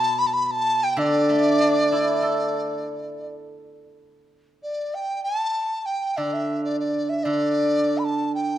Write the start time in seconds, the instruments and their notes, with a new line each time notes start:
Already playing: guzheng B2, dizi A5
0.18 dizi B5
0.26 dizi A5
0.33 dizi B5
0.46 dizi B5
0.51 dizi A5
0.83 dizi G5
0.97 guzheng D3, dizi D5
1.29 guzheng A3
1.60 guzheng D4
1.92 guzheng E4
2.22 guzheng A4
4.62 dizi D5
4.94 dizi G5
5.23 dizi A5
5.85 dizi G5
6.16 guzheng D3, dizi D5
6.33 dizi E5
6.64 dizi D5
6.79 dizi D5
7.09 dizi E5
7.23 guzheng D3, dizi D5
7.98 dizi B5
8.04 dizi A5
8.34 dizi G5